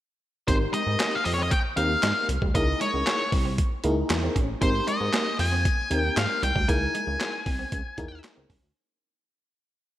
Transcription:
0.47 G#1 C4 D#4 G4 A#4 C5, kick, closed hi-hat
0.74 G#3 D#5, closed hi-hat
0.87 G#2, muted clean electric guitar stroke
1.00 A#3, snare, clap, closed hi-hat
1.15 F5
1.25 F2 D#5, muted clean electric guitar stroke, open hi-hat
1.34 C#5
1.38 C4
1.43 D#5
1.51 G5, kick, closed hi-hat
1.77 D#2 A#3 C4 D#4 G4 A#4 F5, closed hi-hat
2.03 G#2 G#3, snare, clap, closed hi-hat
2.29 C2, muted clean electric guitar stroke, closed hi-hat
2.42 D2 G3, kick
2.54 C#2 A#3 D#4 E4 G#4 A#4 D#5, kick, closed hi-hat
2.81 G#3 C#5, closed hi-hat
2.94 C#2, muted clean electric guitar stroke
3.07 A#3, snare, clap, closed hi-hat
3.32 C2, muted clean electric guitar stroke, kick, open hi-hat
3.45 C4
3.58 kick, closed hi-hat
3.84 C#2 A#3 D#4 E4 G#4 A#4, closed hi-hat
4.10 E2, muted clean electric guitar stroke, snare, clap, closed hi-hat
4.23 C4
4.36 A1 C#4, kick, closed hi-hat
4.61 G#1 C4 D#4 G4 A#4 C5, kick, closed hi-hat
4.87 G#3 D#5, closed hi-hat
5.00 G#2, muted clean electric guitar stroke
5.13 A#3, snare, clap, closed hi-hat
5.39 F2 G#5, muted clean electric guitar stroke, open hi-hat
5.52 C4
5.65 kick, closed hi-hat
5.90 D#2 A#3 C4 D#4 G4 A#4, closed hi-hat
5.95 G5
6.17 G#2 G#3 F5, snare, clap, closed hi-hat
6.43 C2 G5, muted clean electric guitar stroke, closed hi-hat
6.55 D2 G3, kick
6.68 C#2 A#3 D#4 E4 G#4 A#4 G#5, kick, closed hi-hat
6.94 G#3, closed hi-hat
7.07 C#2, muted clean electric guitar stroke
7.20 A#3, snare, clap, closed hi-hat
7.46 C2, muted clean electric guitar stroke, kick, open hi-hat
7.59 C4
7.72 C#2, kick, closed hi-hat
7.98 E2 A#3 D#4 E4 G#4 A#4, kick, closed hi-hat
8.11 D#2
8.24 muted clean electric guitar stroke, snare, clap, closed hi-hat
8.36 C#2 C4
8.50 C2 C#4, kick, open hi-hat
8.63 D2

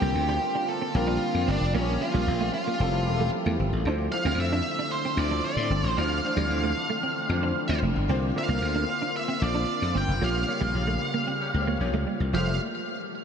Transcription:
Already playing: D3 G3 A#3 C4 D4 F4 G4 A#4
0.02 C2 A#3
0.15 D2
0.29 D4
0.42 muted clean electric guitar stroke
0.55 D4
0.69 A4
0.82 C4
0.95 A#1 G3 C4 D4 F4 A#4, muted clean electric guitar stroke
1.07 D4
1.34 F2
1.48 G1 C4 D4
1.61 F1
1.74 A#1 F3 G3 A#3 C4 C#4 F4 G4 A#4
1.81 C#4
2.01 F4, muted clean electric guitar stroke
2.14 A#1 G3
2.27 A#1
2.41 A3
2.54 F4, muted clean electric guitar stroke
2.67 A#3
2.80 F1 F3 G3 A3 C4 E4 F4 G4 A4 E5
3.06 E1 G3 C4 E4 F4 G4, muted clean electric guitar stroke
3.14 A4
3.20 A3
3.34 muted clean electric guitar stroke
3.46 E2 A3
3.59 G1 C4
3.73 A1
3.85 D2 D3 F3 A3 C4 D4 E4 C5
4.12 F3 D4 E4 C5 F5, muted clean electric guitar stroke
4.25 D2 C4
4.38 F2 E5
4.53 D4
4.66 muted clean electric guitar stroke
4.79 D4
4.92 C5
5.05 C4
5.17 D2 F3 D4 E4 C5 D5, muted clean electric guitar stroke
5.31 D4
5.45 D5
5.57 A2
5.70 G1 C4
5.84 A1
5.98 D2 F3 D4 E4 C5 F5
6.24 E3 F3 D4 C5, muted clean electric guitar stroke
6.37 D2 G3
6.50 D2
6.64 A3
6.77 muted clean electric guitar stroke
6.90 A3
7.03 C4
7.29 F2 E3 F3 D4 C5, muted clean electric guitar stroke
7.43 D4
7.56 muted clean electric guitar stroke
7.69 D2 C4
7.82 F1 A3
7.96 G1
8.09 C2 A#3 C4 D4 F4 C5
8.35 A#3 D4 E4 A#4 F5, muted clean electric guitar stroke
8.43 F4
8.49 C2 A#3
8.62 D2
8.76 D4
8.89 muted clean electric guitar stroke
9.02 D4
9.17 E5
9.28 C4
9.42 A#1 A#3 D4 F4 C5 D5, muted clean electric guitar stroke
9.55 D4
9.82 F2
9.95 G1 C4 G5
10.08 F1
10.21 A#1 C#3 G3 A#3 F4 G4 C#5 F5
10.47 A#3 F4 G4 C#5, muted clean electric guitar stroke
10.61 A#1 G3
10.75 A#1
10.87 A3
11.01 muted clean electric guitar stroke
11.14 A#3
11.27 C4
11.40 A#3 C#4 G4 C#5
11.54 C#2 A#3 F4 G4 C5, muted clean electric guitar stroke
11.62 C#5
11.67 A#3
11.80 A#1 A#3 C#4 G4 C#5, muted clean electric guitar stroke
11.93 C#2 A3
12.07 G3
12.20 C2
12.33 F1 E3 F3 G3 A3 C4 F4 G4 C5 E5 F5

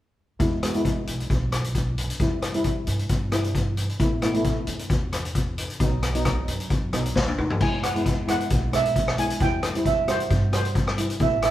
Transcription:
0.39 E2 G#3 B3 E4, kick, closed hi-hat
0.63 G#3 B3 F#4, cross-stick, closed hi-hat
0.74 G#3 B3 E4, closed hi-hat
0.85 kick, closed hi-hat
1.07 B1, closed hi-hat
1.20 closed hi-hat
1.30 B1, kick, closed hi-hat
1.52 cross-stick, closed hi-hat
1.64 closed hi-hat
1.75 kick, closed hi-hat
1.98 closed hi-hat
2.10 closed hi-hat
2.20 E2 G3 C4 E4, kick, closed hi-hat
2.42 cross-stick, closed hi-hat
2.54 G3 C4 E4, closed hi-hat
2.64 kick, closed hi-hat
2.87 G2, closed hi-hat
2.99 closed hi-hat
3.09 G2, kick, closed hi-hat
3.32 G3 C4 E4, cross-stick, closed hi-hat
3.44 closed hi-hat
3.55 kick, closed hi-hat
3.77 closed hi-hat
3.90 closed hi-hat
3.99 A1 A3 B3 E4, kick, closed hi-hat
4.22 A3 B3 E4, cross-stick, closed hi-hat
4.34 A3 B3 E4, closed hi-hat
4.44 kick, closed hi-hat
4.67 E2, closed hi-hat
4.79 closed hi-hat
4.90 E2, kick, closed hi-hat
5.13 cross-stick, closed hi-hat
5.25 closed hi-hat
5.35 kick, closed hi-hat
5.58 closed hi-hat
5.70 closed hi-hat
5.80 B1 F#3 B3 D#4, kick, closed hi-hat
6.03 cross-stick, closed hi-hat
6.14 F#3 B3 D#4, closed hi-hat
6.25 kick, cross-stick, closed hi-hat
6.48 F#2, closed hi-hat
6.60 closed hi-hat
6.70 F#2, kick, closed hi-hat
6.93 B1 F#3 B3 D#4, cross-stick, closed hi-hat
7.06 closed hi-hat
7.16 kick, snare
7.28 high tom
7.38 D#2, mid tom
7.50 floor tom
7.60 E2 G#3 B3 E4 G#5, kick, crash
7.83 F#5, cross-stick, closed hi-hat
7.95 G#3 B3 E4, closed hi-hat
8.06 kick, closed hi-hat
8.27 G#3 B3 E4 F#5, cross-stick, closed hi-hat
8.40 closed hi-hat
8.50 B1, kick, closed hi-hat
8.72 G#3 B3 D#4 E5, cross-stick, closed hi-hat
8.85 closed hi-hat
8.96 kick, closed hi-hat
9.08 cross-stick
9.18 G#3 B3 E4 G#5, closed hi-hat
9.30 closed hi-hat
9.40 E2 G3 C4 E4 G5, kick, closed hi-hat
9.63 cross-stick, closed hi-hat
9.75 G3 C4 E4, closed hi-hat
9.85 E5, kick, closed hi-hat
10.07 G3 C4 F#4 C5, cross-stick, closed hi-hat
10.20 closed hi-hat
10.30 G2, kick, closed hi-hat
10.52 G3 C4 F#4 C5, cross-stick, closed hi-hat
10.65 closed hi-hat
10.75 kick, closed hi-hat
10.87 cross-stick
10.97 G3 C4 E4, closed hi-hat
11.10 closed hi-hat
11.19 A1 A3 B3 E4 E5, kick, closed hi-hat
11.42 E5, cross-stick, closed hi-hat

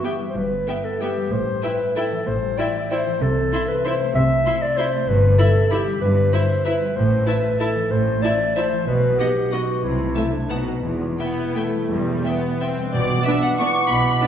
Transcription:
Already playing: G2 B3 B4
0.04 B3 E4 G4 E5 G5
0.19 G3
0.29 C5
0.35 G1 G2 B4
0.51 B3
0.67 B3 E4 E5 G5
0.84 A4 B4
1.00 B3 E4 G4 E5 G5
1.17 G3
1.32 A1 A2 C5
1.47 G3
1.63 E4 B4 E5 G5
1.80 E5
1.96 E4 A4 E5 G5
2.11 E3
2.26 A1 A2 C5
2.42 G3
2.58 E4 D5 E5 G5
2.75 E5
2.91 E4 C5 E5 G5
3.06 E3
3.21 C2 C3 A4
3.37 C4
3.53 E4 E5 C6
3.68 B4 E5
3.85 E4 C5 E5 C6
4.00 A3
4.15 C2 C3 E5
4.30 C4
4.46 E4 E5 C6
4.62 D5 E5
4.78 E4 C5 E5 C6
4.93 A3
5.08 G1 G2 B4
5.23 B3
5.38 E4 A4 E5 B5
5.55 E5
5.71 E4 G4 E5 B5
5.87 G3
6.02 G1 G2 B4
6.17 B3
6.33 E4 C5 E5 B5
6.49 E5
6.65 E4 B4 E5 B5
6.81 G3
6.96 A1 A2 C5
7.11 A3
7.27 E4 B4 E5 A5
7.43 E5
7.60 E4 A4 E5 A5
7.75 E3
7.91 A1 A2 C5
8.06 A3
8.23 E4 D5 E5 A5
8.40 E5
8.56 E4 C5 E5 A5
8.72 E3
8.87 B1 B2 B4
9.03 F#3
9.19 B3 D#4 G4 D#5 F#5
9.36 B4
9.52 B3 D#4 F#4 D#5 F#5
9.68 B3
9.83 C2 C3 E4
9.99 A3
10.15 A3 E4 E5 A5
10.33 D4 A4
10.50 B1 B2 B3 D#4 F#5 A5
10.67 F#4 B4
10.84 E1 E2 E3 E4
11.01 E4
11.19 B3 B4 E5 G5
11.38 G4
11.55 A3 B4 E5 G5
11.73 G3
11.90 E1 E2 E3 G3
12.07 E4
12.25 B3 B4 E5 G5
12.43 G4
12.61 C4 B4 E5 G5
12.76 B2 G3
12.81 B3
12.85 D4
12.90 B4
12.94 B1 B2 B3 F#4 B4 D5 D6
13.26 B3 D4 B4 D5 E5
13.42 F#5
13.58 B3 D4 E4 B4 D5 C#6
13.90 B1 B2 B5
14.22 B3 D4 B4 D5

